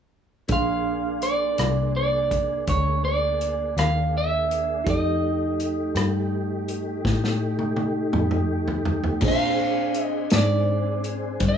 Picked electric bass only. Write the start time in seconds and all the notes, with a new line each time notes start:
0.49 A#1
1.59 C2
2.68 D2
3.77 D#2
4.87 F2
5.95 G2
7.05 A2
8.14 F2
9.22 A#2
10.33 G#2
11.40 G2